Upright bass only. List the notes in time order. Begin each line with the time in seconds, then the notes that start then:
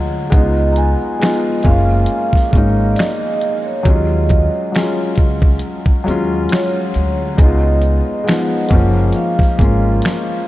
Already playing: D2
0.33 C#2
1.65 F#1
2.53 G#1
3.86 D#2
5.18 C#2
6.07 D#2
6.95 D2
7.39 C#2
8.71 F#1
9.59 G#1